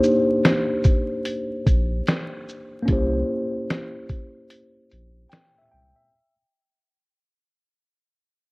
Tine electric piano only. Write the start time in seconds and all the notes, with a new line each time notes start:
Already playing: A#3 D4 D#4 G4 C5
2.82 A#3 C#4
2.88 E4 G4
2.92 C5
5.30 G5
5.58 E5
5.71 G5
5.96 E5